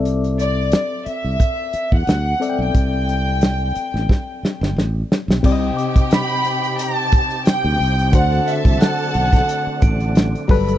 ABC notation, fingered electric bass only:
X:1
M:4/4
L:1/16
Q:"Swing 16ths" 1/4=89
K:Clyd
V:1 name="Fingered electric bass" clef=bass
C,,6 z C,, z3 E,, D,,2 z B,,, | C,,6 z A,,, z3 G,,, A,,,2 z B,,, | C,,2 z8 z3 D,, C,,2 | D,,2 z C,, z2 B,,,2 z2 A,,,4 G,,,2 |]